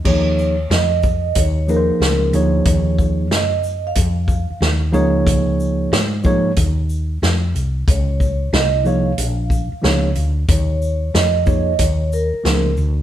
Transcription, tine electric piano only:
X:1
M:4/4
L:1/8
Q:"Swing 16ths" 1/4=92
K:Db
V:1 name="Tine electric piano"
[F,B,EAd] z4 [F,B,EA_c=c]2 [F,B,EAd]- | [F,B,EAd]2 z4 z [F,B,EAd]- | [F,B,EAd]2 z [F,B,EAd] z4 | z3 [F,B,EAd] z2 [F,B,EAd] z |
z3 [F,B,EAd] z2 [F,B,EAc] z |]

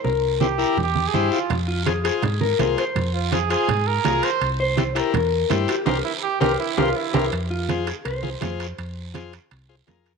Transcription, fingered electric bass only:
X:1
M:4/4
L:1/8
Q:1/4=165
K:Fm
V:1 name="Fingered electric bass" clef=bass
C,,4 =E,,2 G,, z | F,,4 A,,2 C,, z | F,,4 A,,2 C,, z | C,,4 =E,,2 G,, z |
C,, z2 C,, z C,, z C,, | F,,4 C,,2 F,,2 | F,,4 C,,2 F,,2 |]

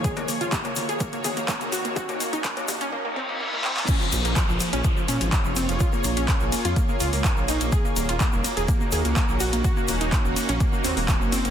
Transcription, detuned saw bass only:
X:1
M:4/4
L:1/16
Q:1/4=125
K:Bbm
V:1 name="Detuned saw bass" clef=bass
z16 | z16 | z2 B,,, B,,, z B,,, z B,,, z2 B,, A,,, z F,,, F,,, F,,, | z2 B,,, B,,, z B,,, z F,, z2 D,, D,, z B,,, B,,, B,,, |
z2 E,,, E,,, z E,,, z E,,, z2 E,, D,, z B,,, B,,, B,,, | z2 E,,, E,,, z E,,, z B,,, z2 E,, E,,,2 G,,, G,,, G,,, |]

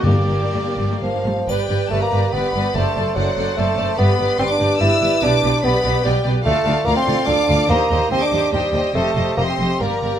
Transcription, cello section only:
X:1
M:3/4
L:1/16
Q:1/4=143
K:Gm
V:1 name="Cello section" clef=bass
G,, z G,, G,, G,, G,, G,, G,, G,, G,, G,, G,, | [K:G] G,,2 G,,2 G,,2 G,,2 G,,2 G,,2 | F,,2 F,,2 F,,2 F,,2 F,,2 F,,2 | G,,2 G,,2 G,,2 G,,2 G,,2 G,,2 |
B,,2 B,,2 B,,2 B,,2 B,,2 B,,2 | [K:Fmix] D,,2 D,,2 D,,2 D,,2 D,,2 D,,2 | E,,2 E,,2 E,,2 E,,2 E,,2 E,,2 | F,,2 F,,2 F,,2 F,,2 G,,2 G,,2 |]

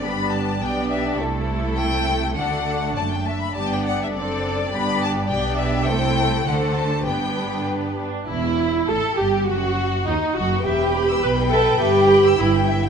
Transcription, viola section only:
X:1
M:2/4
L:1/8
Q:1/4=102
K:G
V:1 name="Viola section"
[B,D]2 [B,D]2 | [A,E]4 | [A,D]3 z | [B,D]2 [CD]2 |
[B,D]2 [B,D]2 | [A,E]2 [A,D]2 | [B,D]3 D | [K:Em] E2 A G |
F2 ^D F | G2 B A | G2 E z |]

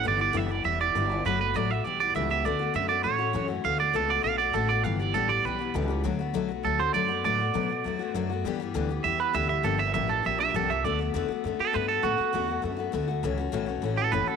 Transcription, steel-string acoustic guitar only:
X:1
M:4/4
L:1/8
Q:1/4=200
K:D
V:1 name="Steel-string acoustic guitar"
[G,,D,E,G,B,E] [E,G,B,E] [G,,D,E,G,B,E] [E,G,B,E] [E,G,B,E] [E,G,B,E] [G,,D,E,G,B,E] [E,G,B,E] | [D,F,A,B,F] [A,B,F] [D,F,A,B,F] [A,B,F] [E,G,B,G] [E,G,B,G] [G,,D,E,G,B,G] [E,G,B,G] | [D,A,B,F] [A,B,F] [D,A,B,F] [A,B,F] [E,A,CF] [A,CF] [A,,E,A,CF] [A,CF] | [D,A,B,F] [A,B,F] [D,A,B,F] [A,B,F] [D,A,B,F] [A,B,F] [D,A,B,F] [A,B,F] |
[G,,D,E,G,B,G] [E,G,B,G] [G,,D,E,G,B,G] [E,G,B,G] [E,G,B,G] [E,G,B,G] [G,,D,E,G,B,G] [E,G,B,G] | [D,F,A,B,F] [A,B,F] [D,F,A,B,F] [A,B,F] [F,A,B,F] [A,B,F] [D,F,A,B,F] [A,B,F] | [D,F,A,B,F] [A,B,F] [D,F,A,B,F] [A,B,F] [F,A,B,F] [A,B,F] [D,F,A,B,F] [A,B,F] | [G,,D,E,G,B,G] [E,G,B,G] [G,,D,E,G,B,G] [E,G,B,G] [E,G,B,G] [E,G,B,G] [G,,D,E,G,B,G] [E,G,B,G] |
[G,,D,=F,_B,DG] [F,B,DG] [G,,D,F,B,DG] [F,B,DG] [F,B,DG] [F,B,DG] [G,,D,F,B,DG] [F,B,DG] | [D,A,B,F] [A,B,F] [D,A,B,F] [A,B,F] [D,A,B,F] [A,B,F] [D,A,B,F] [A,B,F] | [D,A,B,F] [A,B,F] [D,A,B,F] [A,B,F] [D,A,B,F] [A,B,F] [D,A,B,F] [A,B,F] | [A,,E,A,CF] [A,CF] [A,,E,A,CF] [A,CF] [E,A,CF] [A,CF] [A,,E,A,CF] [A,CF] |]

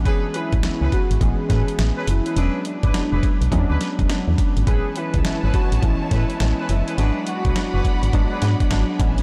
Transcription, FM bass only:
X:1
M:4/4
L:1/16
Q:"Swing 16ths" 1/4=104
K:A
V:1 name="FM bass" clef=bass
A,,, z2 A,,, z C,, z G,,, A,,, z A,, z A,,, z F,,, z | E,,, z2 G,,, z E,,, z B,,, E,, D,, z E,,, z E,, z G,,, | A,,, z2 C,, z G,,, z A,,, A,,, z A,, z A,,, z F,,, z | G,,, z2 B,,, z F,,, z G,,, G,,, z G,, z G,,, z A,,,2 |]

